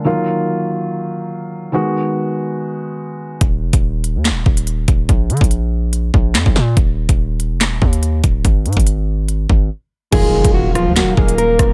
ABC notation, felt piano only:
X:1
M:4/4
L:1/8
Q:1/4=143
K:Ebm
V:1 name="Felt piano"
[E,G,B,F]8 | [E,A,CG]8 | z8 | z8 |
z8 | z8 | [E,G,B,F]8 |]